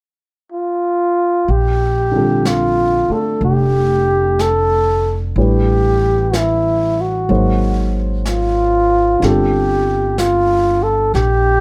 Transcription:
0.52 F4
1.48 A#1 G4, brush sweep
2.12 D3 G3 C4 F4
2.17 A4
2.45 F4, brush sweep, snare, hi-hat pedal
3.09 A3 D4 A4, muted upright bass stroke
3.41 F1 G4, brush sweep
4.39 A4, brush sweep, snare, hi-hat pedal
5.36 A1 E3 G3 A3 D4 G4 B4, brush sweep
6.33 E4, brush sweep, snare, hi-hat pedal
7.01 F#4
7.29 G#1 F#3 A#3 D#4 G#4 C5, brush sweep
8.25 F4, brush sweep, snare, hi-hat pedal
9.20 G1 D3 G3 C4 F4, brush sweep, snare
9.24 G4 A4
10.18 F4, brush sweep, snare, hi-hat pedal
10.83 A4
11.14 A#1 G4, brush sweep, snare

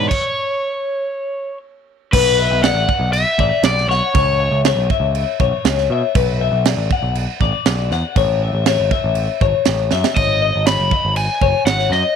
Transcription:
Already playing: D5
0.09 C#5, kick, crash
2.12 B1 B4, kick, crash
2.40 E5
2.50 B1
2.63 D5 F#5, snare, crash
2.74 A1
2.89 F#5, kick
3.00 B1
3.13 E5, crash
3.38 A1 D5, kick
3.63 B1 D5, snare, crash
3.78 snare
3.88 B1 C#5 F#5, snare
4.14 C#2 C#5, kick, crash
4.40 E5
4.51 C#2
4.65 C#5, snare, crash
4.76 B1
4.90 E5, kick
5.00 C#2
5.15 crash
5.40 B1 C#5, kick
5.65 C#2, snare, crash
5.78 snare
5.90 B2 E5
6.15 B1 B4, kick, crash
6.41 E5
6.52 B1
6.65 D5, snare, crash
6.77 A1
6.91 F#5, kick
7.02 B1
7.15 crash
7.40 A1 D5, kick
7.66 B1, snare, crash
7.91 E2 F#5, snare
8.16 A1 C#5, kick, crash
8.42 E5
8.53 A1
8.66 C#5, snare, crash
8.80 G#1
8.91 E5, kick
9.04 A1
9.15 crash
9.41 G#1 C#5, kick
9.65 A1, snare, crash
9.91 F#2 E5, snare
10.04 snare
10.16 G#1 C#5 D#5, kick, crash
10.42 D#5
10.55 G#1
10.66 C#5 B5, snare, crash
10.79 F#1
10.91 D#5, kick
11.05 G#1
11.16 G#5, crash
11.41 F#1 C#5, kick
11.65 G#1 F#5, snare, crash
11.79 snare
11.90 F#2 D#5, snare

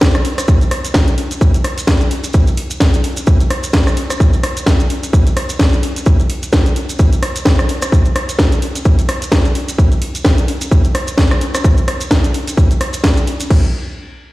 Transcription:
0.01 kick, snare, maracas
0.15 cross-stick, closed hi-hat, maracas
0.25 open hi-hat
0.38 cross-stick, closed hi-hat, maracas
0.48 kick, maracas
0.61 closed hi-hat, maracas
0.71 cross-stick, open hi-hat
0.85 closed hi-hat, maracas
0.94 kick, snare, maracas
1.08 closed hi-hat, maracas
1.18 open hi-hat
1.31 closed hi-hat, maracas
1.41 kick, maracas
1.54 closed hi-hat, maracas
1.64 cross-stick, open hi-hat
1.78 closed hi-hat, maracas
1.87 kick, snare, maracas
2.01 closed hi-hat, maracas
2.11 open hi-hat
2.24 closed hi-hat, maracas
2.33 kick, maracas
2.47 closed hi-hat, maracas
2.57 open hi-hat
2.70 closed hi-hat, maracas
2.80 kick, snare, maracas
2.94 closed hi-hat, maracas
3.04 open hi-hat
3.17 closed hi-hat, maracas
3.27 kick, maracas
3.40 closed hi-hat, maracas
3.50 cross-stick, open hi-hat
3.63 closed hi-hat, maracas
3.73 kick, snare, maracas
3.87 cross-stick, closed hi-hat, maracas
3.97 open hi-hat
4.10 cross-stick, closed hi-hat, maracas
4.20 kick, maracas
4.33 closed hi-hat, maracas
4.43 cross-stick, open hi-hat
4.57 closed hi-hat, maracas
4.66 kick, snare, maracas
4.80 closed hi-hat, maracas
4.90 open hi-hat
5.03 closed hi-hat, maracas
5.13 kick, maracas
5.27 closed hi-hat, maracas
5.37 cross-stick, open hi-hat
5.49 closed hi-hat, maracas
5.59 kick, snare, maracas
5.73 closed hi-hat, maracas
5.83 open hi-hat
5.96 closed hi-hat, maracas
6.06 kick, maracas
6.20 closed hi-hat, maracas
6.30 open hi-hat
6.43 closed hi-hat, maracas
6.52 kick, snare, maracas
6.66 closed hi-hat, maracas
6.76 open hi-hat
6.89 closed hi-hat, maracas
6.99 kick, maracas
7.13 closed hi-hat, maracas
7.23 cross-stick, open hi-hat
7.36 closed hi-hat, maracas
7.45 kick, snare, maracas
7.59 cross-stick, closed hi-hat, maracas
7.69 open hi-hat
7.82 cross-stick, closed hi-hat, maracas
7.92 kick, maracas
8.05 closed hi-hat, maracas
8.16 cross-stick, open hi-hat
8.29 closed hi-hat, maracas
8.39 kick, snare, maracas
8.52 closed hi-hat, maracas
8.62 open hi-hat
8.75 closed hi-hat, maracas
8.85 kick, maracas
8.99 closed hi-hat, maracas
9.09 cross-stick, open hi-hat
9.22 closed hi-hat, maracas
9.32 kick, snare, maracas
9.45 closed hi-hat, maracas
9.55 open hi-hat
9.68 closed hi-hat, maracas
9.78 kick, maracas
9.92 closed hi-hat, maracas
10.02 open hi-hat
10.15 closed hi-hat, maracas
10.25 kick, snare, maracas
10.38 closed hi-hat, maracas
10.48 open hi-hat
10.61 closed hi-hat, maracas
10.71 kick, maracas
10.84 closed hi-hat, maracas
10.95 cross-stick, open hi-hat
11.07 closed hi-hat, maracas
11.18 kick, snare, maracas
11.31 cross-stick, closed hi-hat, maracas
11.41 open hi-hat
11.55 cross-stick, closed hi-hat, maracas
11.64 kick, maracas
11.77 closed hi-hat, maracas
11.88 cross-stick, open hi-hat
12.01 closed hi-hat, maracas
12.11 kick, snare, maracas
12.24 closed hi-hat, maracas
12.34 open hi-hat
12.48 closed hi-hat, maracas
12.57 kick, maracas
12.71 closed hi-hat, maracas
12.81 cross-stick, open hi-hat
12.93 closed hi-hat, maracas
13.04 kick, snare, maracas
13.17 closed hi-hat, maracas
13.27 open hi-hat
13.40 closed hi-hat, maracas
13.50 kick, crash

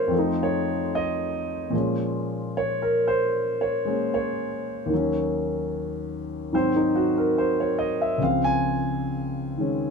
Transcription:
Already playing: C3 F#3 A#3 D#4 A#4 C5 C#5
0.07 F2 F3
0.14 A3 D#4
0.43 C#5
0.95 D#5
1.70 A#2 F3 G#3
1.76 C#4
2.57 C#5
2.82 A#4
3.08 C5
3.61 C#5
3.85 G#3 A#3 C#4
4.14 C#5
4.86 D#2 D#3
4.94 F#3 C#4
6.53 G#2 D#3 F#3 C4 C5
6.76 D#4
6.96 F#4
7.18 A#4
7.38 C5
7.60 C#5
7.79 D#5
8.01 E5
8.18 C#2 C#3 F3
8.23 C4 F5
8.44 G#5
9.58 D#3 G#3 C#4

